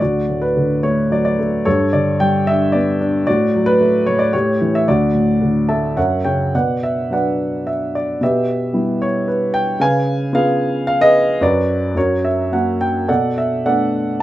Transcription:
0.00 1.63 D2 medium
0.00 0.80 F#4 medium
0.00 0.43 D5 medium
0.30 1.36 A2 soft
0.42 0.84 B4 medium
0.57 1.63 D3 soft
0.83 1.38 A3 soft
0.83 1.12 C#5 medium
1.10 1.64 F#3 medium
1.10 1.23 D5 medium
1.25 1.63 D5 medium
1.39 1.65 A3 medium
1.65 3.23 G2 medium
1.65 2.43 A4 medium
1.65 1.94 C#5 medium
1.93 2.97 D3 soft
1.93 2.18 D5 medium
2.20 3.24 G3 medium
2.20 2.48 G5 medium
2.47 2.99 D4 medium
2.47 2.75 E5 medium
2.72 3.26 B3 medium
2.72 3.22 D5 medium
3.01 3.26 D4 medium
3.27 4.07 A2 medium
3.27 4.02 F#4 medium
3.27 3.67 D5 medium
3.55 4.32 F#3 medium
3.66 4.03 B4 loud
3.81 4.32 A3 medium
4.06 4.33 A2 medium
4.06 4.20 C#5 medium
4.19 4.33 D5 medium
4.33 4.86 A2 medium
4.33 4.83 G4 medium
4.33 4.75 C#5 medium
4.61 4.87 E3 medium
4.75 4.88 E5 medium
4.88 5.94 D2 medium
4.88 5.93 F#4 medium
4.88 5.93 D5 medium
5.14 5.95 A2 medium
5.41 5.95 D3 soft
5.69 5.96 A3 medium
5.69 5.95 E5 medium
5.69 5.95 A5 medium
5.97 6.52 F#2 medium
5.97 6.50 A#4 medium
5.97 6.24 C#5 medium
5.97 6.23 E5 medium
5.97 6.26 F#5 medium
6.24 6.53 C#3 soft
6.24 6.52 C#5 medium
6.24 6.51 G5 medium
6.55 8.17 B2 medium
6.55 7.12 B4 soft
6.55 7.12 D5 medium
6.55 6.83 F#5 medium
6.83 7.12 E5 medium
7.10 8.17 F#3 soft
7.10 8.17 B3 soft
7.10 8.18 D4 soft
7.10 7.91 B4 medium
7.10 7.91 D5 medium
7.10 7.69 F#5 medium
7.67 7.95 E5 medium
7.95 8.20 D5 medium
8.21 9.76 B2 medium
8.21 8.97 G4 medium
8.21 8.97 B4 medium
8.21 9.04 E5 medium
8.73 9.76 G3 soft
8.73 9.76 B3 soft
8.73 9.77 E4 soft
9.02 9.28 C#5 medium
9.28 9.54 B4 medium
9.54 9.81 G5 medium
9.80 11.37 C#3 medium
9.80 10.33 B4 medium
9.80 10.33 F5 medium
9.80 10.30 G#5 loud
10.33 11.38 B3 soft
10.33 11.38 C#4 soft
10.33 11.38 F4 medium
10.33 11.00 G#4 medium
10.33 10.99 B4 medium
10.33 10.84 F5 medium
10.87 11.01 F5 medium
11.01 11.39 G#4 medium
11.01 11.38 B4 medium
11.01 11.43 D#5 loud
11.41 11.94 F#2 medium
11.41 11.92 F#4 medium
11.41 11.92 B4 medium
11.41 11.98 D5 medium
11.95 13.05 F#2 medium
11.95 12.77 F#4 medium
11.95 12.76 A#4 medium
11.95 12.25 C#5 medium
12.25 12.53 E5 medium
12.52 13.07 F#3 soft
12.52 13.07 A#3 soft
12.52 13.08 C#4 soft
12.52 12.82 F#5 medium
12.81 13.10 G5 medium
13.08 14.22 B2 medium
13.08 13.64 A4 medium
13.08 13.64 D5 medium
13.08 13.38 F#5 medium
13.38 13.64 E5 medium
13.66 14.22 A3 soft
13.66 14.22 B3 soft
13.66 14.22 D4 soft
13.66 14.22 A4 medium
13.66 14.22 D5 medium
13.66 14.22 F#5 medium

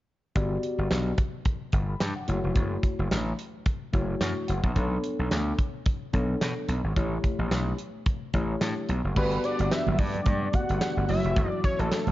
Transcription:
0.35 0.56 G1 loud
0.35 1.15 B3 medium
0.35 1.15 F#4 medium
0.35 1.15 G4 medium
0.35 1.16 D5 medium
0.35 kick medium
0.35 closed hi-hat medium
0.63 closed hi-hat medium
0.78 0.88 G1 medium
0.91 1.11 B1 medium
0.91 snare loud
0.91 clap medium
0.91 closed hi-hat medium
1.18 kick loud
1.18 closed hi-hat medium
1.45 kick loud
1.45 closed hi-hat medium
1.72 1.94 G1 medium
1.72 kick medium
1.72 closed hi-hat medium
1.89 2.00 B5 medium
2.00 2.12 G2 loud
2.00 2.15 G5 medium
2.00 snare loud
2.00 clap medium
2.00 closed hi-hat loud
2.16 2.42 F#5 medium
2.28 2.40 F#1 medium
2.28 3.17 A3 medium
2.28 3.17 E4 medium
2.28 3.17 F#4 medium
2.28 3.17 C#5 medium
2.28 closed hi-hat medium
2.44 2.53 F1 medium
2.56 2.76 F#1 loud
2.56 kick medium
2.56 closed hi-hat medium
2.83 kick medium
2.83 closed hi-hat medium
2.99 3.08 F#1 medium
3.11 3.32 A1 medium
3.11 snare loud
3.11 clap medium
3.11 closed hi-hat medium
3.39 closed hi-hat medium
3.66 kick loud
3.66 closed hi-hat medium
3.93 4.14 F#1 medium
3.93 4.53 A3 medium
3.93 4.53 E4 medium
3.93 4.53 F#4 medium
3.93 4.53 C#5 medium
3.93 kick medium
3.93 closed hi-hat medium
4.21 4.33 F#2 medium
4.21 4.46 C#6 medium
4.21 snare loud
4.21 clap medium
4.21 closed hi-hat loud
4.48 4.60 F#1 medium
4.48 4.74 F#5 medium
4.48 closed hi-hat medium
4.64 4.73 A#1 medium
4.64 kick medium
4.76 4.97 B1 medium
4.76 5.56 B3 medium
4.76 5.56 D4 medium
4.76 5.56 A4 medium
4.76 5.56 C#5 medium
4.76 kick medium
4.76 closed hi-hat medium
5.04 closed hi-hat medium
5.19 5.28 B1 medium
5.31 5.52 D2 medium
5.31 snare medium
5.31 clap medium
5.31 closed hi-hat medium
5.59 kick medium
5.59 closed hi-hat medium
5.86 kick loud
5.86 closed hi-hat medium
6.13 6.34 B1 medium
6.13 6.73 B3 medium
6.13 6.74 D4 medium
6.13 6.74 A4 medium
6.13 6.74 C#5 medium
6.13 kick medium
6.13 closed hi-hat medium
6.41 6.53 B2 medium
6.41 snare loud
6.41 clap medium
6.41 closed hi-hat loud
6.68 6.80 B1 medium
6.68 closed hi-hat medium
6.84 6.93 G#1 medium
6.96 7.17 A1 loud
6.96 7.76 A3 medium
6.96 7.76 E4 medium
6.96 7.76 G4 medium
6.96 7.76 C#5 medium
6.96 kick loud
6.96 closed hi-hat medium
7.24 kick medium
7.24 closed hi-hat medium
7.39 7.48 A1 medium
7.51 7.72 B1 medium
7.51 snare medium
7.51 clap medium
7.51 closed hi-hat medium
7.78 closed hi-hat medium
8.06 kick loud
8.06 closed hi-hat medium
8.34 8.54 A1 medium
8.34 8.94 A3 medium
8.34 8.94 E4 medium
8.34 8.94 G4 medium
8.34 8.94 C#5 medium
8.34 kick medium
8.34 closed hi-hat medium
8.61 8.73 A2 medium
8.61 snare loud
8.61 clap medium
8.61 closed hi-hat loud
8.89 9.00 B1 medium
8.89 closed hi-hat medium
9.04 9.13 F#1 medium
9.16 9.37 G1 loud
9.16 11.07 D3 medium
9.16 11.07 G3 medium
9.16 9.96 B3 medium
9.16 11.07 B3 medium
9.16 9.96 F#4 medium
9.16 9.96 G4 medium
9.16 9.42 B4 medium
9.16 9.96 D5 medium
9.16 11.07 F#5 medium
9.16 kick medium
9.16 crash medium
9.16 muted conga soft
9.32 closed hi-hat soft
9.32 muted conga soft
9.44 9.73 D5 loud
9.44 closed hi-hat medium
9.59 9.69 G1 medium
9.59 closed hi-hat medium
9.59 high conga medium
9.71 10.00 E5 loud
9.71 snare loud
9.71 clap medium
9.71 closed hi-hat medium
9.71 muted conga soft
9.87 9.96 G1 loud
9.87 muted conga soft
9.87 high conga medium
9.87 low conga medium
9.99 10.19 G2 medium
9.99 10.56 D5 loud
9.99 kick loud
9.99 open hi-hat medium
9.99 high conga medium
10.14 closed hi-hat soft
10.14 low conga medium
10.26 10.47 G2 loud
10.26 kick loud
10.26 closed hi-hat medium
10.26 muted conga soft
10.26 high conga medium
10.53 11.09 B3 medium
10.53 11.08 F#4 medium
10.53 11.09 G4 medium
10.53 11.09 D5 medium
10.53 11.08 F#5 loud
10.53 kick medium
10.53 closed hi-hat medium
10.53 high conga medium
10.69 10.79 G1 medium
10.69 closed hi-hat soft
10.81 snare loud
10.81 clap medium
10.81 closed hi-hat loud
10.81 muted conga soft
10.97 11.06 G1 medium
10.97 high conga medium
11.09 11.21 F#1 medium
11.09 12.12 E3 medium
11.09 12.12 F#3 medium
11.09 12.12 A3 medium
11.09 11.98 A3 medium
11.09 12.12 E4 medium
11.09 11.98 E4 medium
11.09 11.98 F#4 medium
11.09 11.98 C#5 medium
11.09 11.49 E5 loud
11.09 open hi-hat medium
11.09 low conga medium
11.24 11.33 F1 medium
11.24 closed hi-hat soft
11.36 11.48 F#1 loud
11.36 kick medium
11.36 closed hi-hat medium
11.49 11.60 D5 loud
11.49 muted conga soft
11.64 11.81 C#5 loud
11.64 kick medium
11.64 closed hi-hat medium
11.79 11.88 A1 medium
11.79 12.12 A4 medium
11.79 closed hi-hat medium
11.79 high conga medium
11.92 snare medium
11.92 clap medium
11.92 closed hi-hat medium
11.92 muted conga soft
12.07 12.12 F#1 medium
12.07 closed hi-hat soft
12.07 muted conga soft
12.07 high conga medium
12.07 low conga medium

